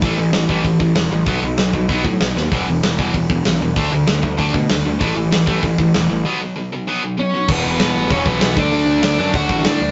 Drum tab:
CC |--------|--------|--------|--------|
HH |o-o-o-o-|o-o-o-o-|o-o-o-o-|o-o-o-o-|
SD |--o---o-|--o---oo|--o---o-|--o---o-|
BD |o--ooo--|o--ooo--|o--ooo--|o--ooo--|

CC |--------|--------|x-------|--------|
HH |o-o-o-o-|--------|--o-o-o-|o-o-o-o-|
SD |--o---o-|--------|--o---o-|--o---o-|
BD |o--ooo--|--------|o---oo-o|----oo--|